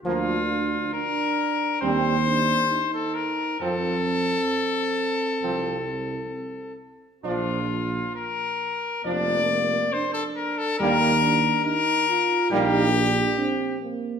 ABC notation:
X:1
M:4/4
L:1/16
Q:1/4=68
K:Bb
V:1 name="Trumpet"
F4 B4 c4- c A B2 | A12- A2 z2 | F4 B4 d4 c A B A | B4 B4 G6 z2 |]
V:2 name="Euphonium"
D4 D4 C2 D2 E4 | C12- C2 z2 | z8 B,4 D4 | E2 D2 E2 F2 E2 D2 C2 B,2 |]
V:3 name="Flugelhorn"
B,2 z6 C2 z6 | C2 z6 C2 z6 | D2 z6 D2 z6 | B,2 z6 B,2 z6 |]
V:4 name="French horn" clef=bass
F,2 z6 G,2 z6 | F,2 z6 F,2 z6 | F,2 z6 F,2 z6 | G,2 z6 G,2 z6 |]
V:5 name="Tuba" clef=bass
D,,4 z4 E,,4 z4 | F,,4 z4 C,,4 z4 | B,,,4 z4 F,,,4 z4 | E,,4 z4 B,,,4 z4 |]